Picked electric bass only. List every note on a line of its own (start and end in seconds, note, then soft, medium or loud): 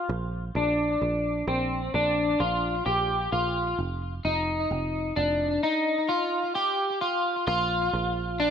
0.09 0.50 A#1 medium
0.55 0.96 A#1 medium
1.02 1.42 A#1 medium
1.47 1.88 A#1 medium
1.94 2.35 A#1 medium
2.40 2.81 A#1 medium
2.86 3.27 A#1 medium
3.32 3.73 A#1 medium
3.79 4.19 F1 medium
4.25 4.65 F1 medium
4.71 5.11 F1 medium
5.17 5.58 F1 medium
7.48 7.88 A#1 loud
7.93 8.50 A#1 medium